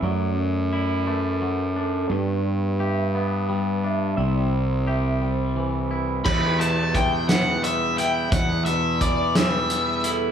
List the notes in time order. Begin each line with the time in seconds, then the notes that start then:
Already playing: E4
0.02 F#2 F#3 A3 F#4 D5
0.73 E4 D5
1.07 A3 B4
1.42 F#3
1.76 D4 A4
2.10 G2 B3 D4 G4 D5
2.80 G4 E5
3.15 B3 B4
3.49 G3
3.84 D4 E5
4.17 C2 C3 C4 E4 D5 E5
4.87 G4 E5
5.21 G3 C5
5.56 E3
5.91 E4
6.24 E2 B3 E4 G4 D5 E5 B5, kick, crash
6.60 B2 A5, closed hi-hat
6.94 E3 E5 G5, kick, closed hi-hat
7.29 G3 B4 F#5, snare, closed hi-hat
7.64 B3 E5, closed hi-hat
7.98 E4 E5 G5, closed hi-hat
8.32 E2 D5 F#5, kick, closed hi-hat
8.65 B2 E5, closed hi-hat
9.00 E3 D5, kick, closed hi-hat
9.35 G3 B4 E5, snare, closed hi-hat
9.70 B3, closed hi-hat
10.03 E4 A4, closed hi-hat